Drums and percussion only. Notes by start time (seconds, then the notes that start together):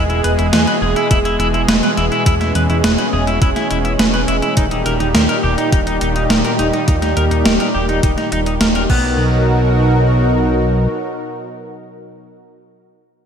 0.10 closed hi-hat
0.24 closed hi-hat
0.39 closed hi-hat
0.53 snare, closed hi-hat
0.67 closed hi-hat
0.96 closed hi-hat
1.11 kick, closed hi-hat
1.25 closed hi-hat
1.40 closed hi-hat
1.54 closed hi-hat
1.69 snare, closed hi-hat
1.83 closed hi-hat
1.97 closed hi-hat
2.12 closed hi-hat
2.26 kick, closed hi-hat
2.41 snare, closed hi-hat
2.55 closed hi-hat
2.70 closed hi-hat
2.84 snare, closed hi-hat
2.98 closed hi-hat
3.27 closed hi-hat
3.42 kick, closed hi-hat
3.56 snare, closed hi-hat
3.71 closed hi-hat
3.85 closed hi-hat
3.99 snare, closed hi-hat
4.14 closed hi-hat
4.28 closed hi-hat
4.42 closed hi-hat
4.57 kick, closed hi-hat
4.71 closed hi-hat
4.86 closed hi-hat
5.00 closed hi-hat
5.15 snare, closed hi-hat
5.29 closed hi-hat
5.58 closed hi-hat
5.72 kick, closed hi-hat
5.87 closed hi-hat
6.01 closed hi-hat
6.16 closed hi-hat
6.30 snare, closed hi-hat
6.45 closed hi-hat
6.59 closed hi-hat
6.73 closed hi-hat
6.88 kick, closed hi-hat
7.02 snare, closed hi-hat
7.17 closed hi-hat
7.31 closed hi-hat
7.46 snare, closed hi-hat
7.60 closed hi-hat
7.89 closed hi-hat
8.03 kick, closed hi-hat
8.18 snare, closed hi-hat
8.32 closed hi-hat
8.46 closed hi-hat
8.61 snare, closed hi-hat
8.75 closed hi-hat
8.90 kick, crash